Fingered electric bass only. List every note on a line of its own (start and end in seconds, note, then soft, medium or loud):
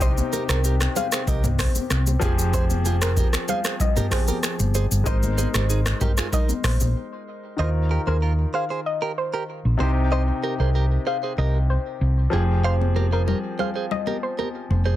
0.00 0.19 C2 loud
0.49 0.86 C2 loud
1.27 1.65 C2 loud
1.90 2.16 C2 loud
2.22 3.22 F1 loud
4.60 4.85 G1 medium
4.91 5.03 G1 medium
5.06 5.44 G#1 loud
5.54 5.91 G#1 loud
6.64 6.77 A#1 medium
6.81 6.93 A#1 medium
7.59 7.97 D#2 medium
8.07 8.44 D#2 medium
9.65 9.77 A#1 medium
9.80 10.30 C2 medium
10.60 10.97 C2 medium
11.38 11.76 C2 loud
12.01 12.26 C2 medium
12.33 13.33 F1 medium
14.70 14.95 F1 medium